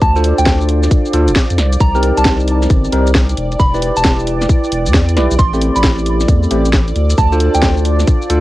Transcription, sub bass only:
0.02 0.33 D2 loud
0.39 0.88 D2 medium
1.13 1.29 D2 medium
1.28 1.34 D1 loud
1.51 1.60 F2 medium
1.58 1.77 C2 loud
1.81 2.12 C2 loud
2.18 2.67 C2 medium
2.70 2.89 G1 loud
2.92 3.34 C2 medium
3.37 3.56 E1 medium
3.60 3.91 E1 loud
3.96 4.46 E1 medium
4.72 4.88 E1 medium
4.86 5.18 E2 loud
5.16 5.28 B1 medium
5.31 5.37 B1 loud
5.39 5.70 A1 loud
5.76 6.25 A1 medium
6.29 6.47 E2 loud
6.51 6.93 A1 loud
6.96 7.14 D2 loud
7.18 7.49 D2 loud
7.55 8.05 D2 medium
8.30 8.40 D2 medium

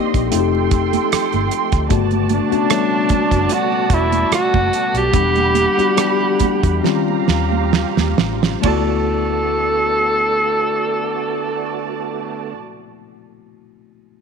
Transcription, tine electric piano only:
0.00 0.34 A#3 medium
0.00 0.35 D4 medium
0.00 0.32 D#4 medium
0.00 0.34 G4 medium
0.00 0.34 D5 medium
0.31 1.66 A3 medium
0.31 1.67 C4 medium
0.31 1.67 D#4 medium
0.31 0.40 F4 medium
0.39 1.70 G4 loud
1.90 2.42 C#3 medium
1.90 2.41 A3 medium
1.90 2.41 B3 medium
1.90 2.42 F#4 medium
2.51 2.67 A3 medium
2.51 2.67 B3 medium
2.51 2.67 C#4 medium
2.51 2.67 F#4 medium
2.70 4.07 G3 medium
2.70 4.06 A3 medium
2.70 4.07 B3 medium
2.70 4.07 C#5 medium
5.13 5.67 G3 medium
5.13 5.67 B3 medium
5.13 5.67 D4 medium
5.13 5.68 F#5 medium
5.77 5.94 G3 medium
5.77 5.95 B3 medium
5.77 5.95 D4 medium
5.77 5.95 F#4 medium
5.96 6.82 G3 medium
5.96 6.84 B3 medium
5.96 6.84 D4 medium
5.96 6.84 G4 medium
6.83 8.36 G3 medium
6.83 8.36 C4 medium
6.83 8.36 C#4 medium
6.83 8.36 F4 medium
8.61 12.51 A3 medium
8.61 12.52 B3 medium
8.61 12.54 E4 medium
8.66 12.55 F#4 medium

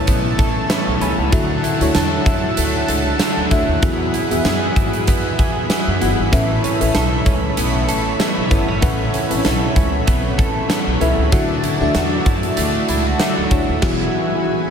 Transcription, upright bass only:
0.08 0.39 B1 loud
0.39 0.62 A1 loud
0.87 0.98 B1 medium
1.01 1.14 C2 loud
1.18 1.29 C#2 medium
1.32 1.56 D2 loud
1.80 1.91 D2 loud
1.95 2.19 E2 medium
2.26 2.50 F#2 loud
2.58 2.81 D2 loud
2.88 3.12 C#2 loud
3.37 3.48 D2 medium
3.51 3.64 D2 medium
3.68 3.79 D#2 loud
3.82 4.06 E2 loud
4.31 4.41 E2 loud
4.45 4.68 F#2 medium
4.76 5.08 G#2 loud
5.08 5.31 F#2 loud
5.39 5.62 E2 medium
5.87 5.98 F#2 medium
6.02 6.14 G1 medium
6.19 6.29 G#1 medium
6.33 6.56 A1 loud
6.81 6.91 A1 loud
6.95 7.18 B1 loud
7.26 7.50 C#2 loud
7.57 7.89 B1 loud
7.89 8.12 A1 medium
8.37 8.48 B1 medium
8.51 8.64 G1 medium
8.68 8.79 G#1 medium
8.82 9.06 A1 loud
9.31 9.41 A1 loud
9.45 9.69 B1 medium
9.76 10.00 C#2 loud
10.08 10.39 B1 medium
10.39 10.62 A1 loud
10.87 10.97 B1 medium
11.01 11.14 C2 medium
11.18 11.29 C#2 medium
11.32 11.56 D2 loud
11.80 11.91 D2 loud
11.95 12.18 E2 medium
12.26 12.50 F#2 medium
12.57 12.81 D2 loud
12.89 13.12 C#2 loud
13.37 13.48 D2 medium
13.51 13.64 D2 medium
13.69 13.79 D#2 loud
13.82 14.04 E1 loud

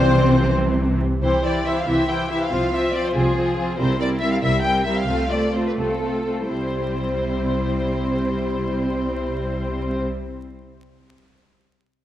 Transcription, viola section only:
0.00 0.97 E3 medium
0.00 0.97 C4 medium
1.22 1.42 E3 soft
1.22 1.42 E4 soft
1.43 1.64 E3 soft
1.43 1.64 E4 soft
1.66 1.86 E3 soft
1.66 1.86 E4 soft
1.87 2.07 E3 soft
1.87 2.06 E4 soft
2.07 2.29 E3 soft
2.07 2.29 E4 soft
2.31 2.51 E3 soft
2.31 2.52 E4 soft
2.51 2.71 F3 soft
2.51 2.71 C4 soft
2.72 2.93 F3 soft
2.72 2.93 C4 soft
2.94 3.13 F3 soft
2.94 3.14 C4 soft
3.15 3.35 F3 soft
3.15 3.35 C4 soft
3.36 3.56 F3 soft
3.36 3.56 C4 soft
3.57 3.77 F3 soft
3.57 3.76 C4 soft
3.77 3.98 G3 soft
3.77 3.98 C4 soft
4.00 4.20 G3 soft
4.00 4.20 C4 soft
4.22 4.42 G3 soft
4.22 4.43 C4 soft
4.43 4.64 G3 soft
4.43 4.64 C4 soft
4.66 4.86 G3 soft
4.66 4.86 C4 soft
4.87 5.08 G3 soft
4.87 5.08 C4 soft
5.09 5.29 A3 soft
5.09 5.30 C4 soft
5.31 5.52 A3 soft
5.31 5.51 C4 soft
5.53 5.76 A3 soft
5.53 5.75 C4 soft
5.77 6.00 A3 soft
5.77 6.00 C4 soft
6.01 6.24 A3 soft
6.01 6.24 C4 soft
6.25 6.48 A3 soft
6.25 6.47 C4 soft
6.49 10.02 G3 soft
6.49 10.01 C4 soft

